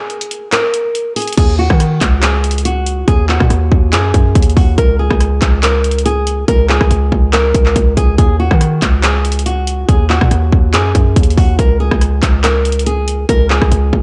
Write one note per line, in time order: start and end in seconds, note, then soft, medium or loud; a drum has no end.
0.00 0.49 G#4 medium
0.10 closed hi-hat soft
0.21 closed hi-hat medium
0.31 closed hi-hat medium
0.52 1.12 A#4 medium
0.52 clap loud
0.52 closed hi-hat medium
0.74 closed hi-hat medium
0.95 closed hi-hat medium
1.16 1.35 G#4 medium
1.16 closed hi-hat soft
1.16 open hi-hat medium
1.22 closed hi-hat medium
1.27 closed hi-hat medium
1.33 closed hi-hat medium
1.37 1.69 D#2 loud
1.37 1.56 G#4 loud
1.37 kick loud
1.37 closed hi-hat medium
1.37 crash loud
1.59 2.19 F#4 medium
1.70 2.00 D#3 loud
1.70 kick loud
1.70 cross-stick loud
1.80 cross-stick medium
1.80 closed hi-hat medium
2.01 3.04 C#2 loud
2.01 kick loud
2.01 clap medium
2.01 closed hi-hat medium
2.23 2.63 G#4 medium
2.23 clap loud
2.23 closed hi-hat medium
2.44 closed hi-hat medium
2.51 closed hi-hat medium
2.58 closed hi-hat medium
2.65 3.05 F#4 medium
2.65 closed hi-hat medium
2.86 closed hi-hat medium
3.08 3.39 D#2 loud
3.08 3.26 G#4 loud
3.08 kick loud
3.08 closed hi-hat medium
3.29 3.89 F#4 medium
3.29 clap medium
3.40 3.50 A#2 loud
3.40 kick loud
3.40 cross-stick loud
3.50 3.71 D#2 loud
3.50 cross-stick medium
3.50 closed hi-hat medium
3.72 3.94 D#2 loud
3.72 kick loud
3.93 4.13 F#2 loud
3.93 4.53 G#4 medium
3.93 clap loud
3.93 closed hi-hat medium
4.14 4.35 F#2 loud
4.14 kick loud
4.14 closed hi-hat medium
4.35 4.56 D#2 loud
4.35 kick loud
4.35 closed hi-hat medium
4.42 closed hi-hat medium
4.50 closed hi-hat soft
4.57 4.77 D#2 loud
4.57 4.75 F#4 medium
4.57 kick loud
4.57 open hi-hat medium
4.78 5.09 C#2 loud
4.78 4.97 A#4 loud
4.78 kick loud
4.78 closed hi-hat medium
4.99 5.59 G#4 medium
5.10 5.41 C#2 loud
5.10 kick loud
5.10 cross-stick loud
5.20 cross-stick medium
5.20 closed hi-hat medium
5.42 6.44 C#2 loud
5.42 kick loud
5.42 clap medium
5.42 closed hi-hat medium
5.63 6.03 A#4 medium
5.63 clap loud
5.63 closed hi-hat medium
5.84 closed hi-hat medium
5.91 closed hi-hat medium
5.98 closed hi-hat medium
6.06 6.46 G#4 loud
6.06 closed hi-hat medium
6.27 closed hi-hat medium
6.48 6.79 C#2 loud
6.48 6.67 A#4 loud
6.48 kick loud
6.48 closed hi-hat medium
6.69 7.29 G#4 medium
6.69 clap loud
6.81 6.90 C#2 loud
6.81 kick loud
6.81 cross-stick loud
6.91 7.11 C#2 loud
6.91 closed hi-hat medium
7.12 7.53 C#2 loud
7.12 kick medium
7.33 7.93 A#4 medium
7.33 clap loud
7.33 closed hi-hat medium
7.54 7.75 C#2 loud
7.54 kick loud
7.54 closed hi-hat medium
7.66 clap medium
7.76 7.96 C#2 loud
7.76 kick loud
7.76 closed hi-hat medium
7.97 8.17 C#2 loud
7.97 8.16 G#4 medium
7.97 kick loud
7.97 closed hi-hat medium
8.18 8.50 D#2 loud
8.18 8.37 G#4 loud
8.18 kick loud
8.18 closed hi-hat medium
8.40 9.00 F#4 medium
8.51 8.81 D#3 loud
8.51 kick loud
8.51 cross-stick loud
8.61 cross-stick medium
8.61 closed hi-hat medium
8.82 9.85 C#2 loud
8.82 kick medium
8.82 clap medium
8.82 closed hi-hat medium
9.03 9.43 G#4 medium
9.03 clap loud
9.03 closed hi-hat medium
9.25 closed hi-hat medium
9.32 closed hi-hat medium
9.39 closed hi-hat medium
9.46 9.86 F#4 medium
9.46 closed hi-hat medium
9.67 closed hi-hat medium
9.89 10.20 D#2 loud
9.89 10.07 G#4 loud
9.89 kick loud
9.89 closed hi-hat medium
10.10 10.70 F#4 medium
10.10 clap loud
10.21 10.31 A#2 loud
10.21 kick medium
10.21 cross-stick loud
10.31 10.52 D#2 loud
10.31 cross-stick medium
10.31 closed hi-hat medium
10.52 10.75 D#2 loud
10.52 kick loud
10.74 10.94 F#2 loud
10.74 11.34 G#4 medium
10.74 clap loud
10.74 closed hi-hat medium
10.95 11.15 F#2 loud
10.95 kick loud
10.95 closed hi-hat medium
11.16 11.37 D#2 loud
11.16 kick loud
11.16 closed hi-hat medium
11.23 closed hi-hat medium
11.30 closed hi-hat soft
11.37 11.58 D#2 loud
11.37 11.56 F#4 medium
11.37 kick loud
11.37 open hi-hat medium
11.59 11.90 C#2 loud
11.59 11.77 A#4 loud
11.59 kick loud
11.59 closed hi-hat medium
11.80 12.40 G#4 medium
11.91 12.21 C#2 loud
11.91 kick loud
11.91 cross-stick loud
12.01 cross-stick medium
12.01 closed hi-hat medium
12.23 13.25 C#2 loud
12.23 kick medium
12.23 clap medium
12.23 closed hi-hat medium
12.44 12.84 A#4 medium
12.44 clap loud
12.44 closed hi-hat medium
12.65 closed hi-hat medium
12.72 closed hi-hat medium
12.79 closed hi-hat medium
12.86 13.26 G#4 loud
12.86 closed hi-hat medium
13.08 closed hi-hat medium
13.29 13.60 C#2 loud
13.29 13.48 A#4 loud
13.29 kick loud
13.29 closed hi-hat medium
13.50 14.02 G#4 medium
13.50 clap loud
13.62 13.71 C#2 loud
13.62 kick loud
13.62 cross-stick loud
13.72 13.92 C#2 loud
13.72 closed hi-hat medium
13.93 14.02 C#2 loud
13.93 kick medium